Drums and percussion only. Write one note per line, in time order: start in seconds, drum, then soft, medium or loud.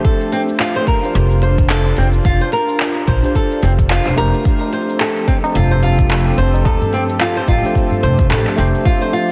0.05 kick loud
0.05 cabasa medium
0.21 cabasa soft
0.32 open hi-hat medium
0.49 cabasa medium
0.60 clap loud
0.60 cabasa medium
0.76 cabasa soft
0.87 kick medium
0.87 open hi-hat medium
1.03 cabasa medium
1.15 cabasa medium
1.31 cabasa soft
1.42 open hi-hat medium
1.58 kick loud
1.58 cabasa medium
1.70 clap loud
1.70 cabasa medium
1.86 cabasa soft
1.97 open hi-hat medium
2.13 cabasa medium
2.25 kick loud
2.25 cabasa medium
2.41 cabasa soft
2.52 open hi-hat medium
2.69 cabasa medium
2.80 clap loud
2.80 cabasa medium
2.96 cabasa soft
3.07 kick medium
3.07 open hi-hat medium
3.24 cabasa medium
3.35 kick medium
3.35 cabasa medium
3.52 cabasa soft
3.63 open hi-hat medium
3.79 kick loud
3.79 cabasa medium
3.90 clap medium
3.90 cabasa medium
4.06 clap soft
4.06 cabasa soft
4.18 open hi-hat medium
4.34 cabasa medium
4.45 kick loud
4.45 cabasa medium
4.61 tabla tin medium
4.61 cabasa soft
4.73 open hi-hat medium
4.88 tabla tin soft
4.88 cabasa medium
5.00 clap medium
5.00 cabasa medium
5.17 cabasa soft
5.27 kick medium
5.27 open hi-hat medium
5.27 tabla tin medium
5.44 tabla na medium
5.44 cabasa medium
5.56 tabla ge medium
5.56 cabasa medium
5.72 cabasa soft
5.83 open hi-hat medium
5.99 kick loud
5.99 cabasa medium
6.11 clap medium
6.11 cabasa medium
6.27 cabasa soft
6.38 open hi-hat medium
6.54 tabla tin medium
6.54 cabasa medium
6.65 kick loud
6.65 tabla na medium
6.65 cabasa medium
6.81 tabla tin soft
6.81 tabla ge medium
6.81 cabasa soft
6.93 open hi-hat medium
7.09 tabla tin soft
7.09 cabasa medium
7.20 clap loud
7.20 cabasa medium
7.37 cabasa soft
7.48 kick medium
7.48 open hi-hat medium
7.48 tabla tin medium
7.65 cabasa medium
7.75 kick medium
7.75 cabasa medium
7.91 tabla ge medium
7.91 cabasa soft
8.03 open hi-hat medium
8.19 kick loud
8.19 cabasa medium
8.31 clap medium
8.31 cabasa medium
8.47 clap soft
8.47 cabasa soft
8.58 open hi-hat medium
8.58 tabla na soft
8.75 cabasa medium
8.85 kick loud
8.85 cabasa medium
9.01 tabla tin medium
9.01 cabasa soft
9.13 open hi-hat loud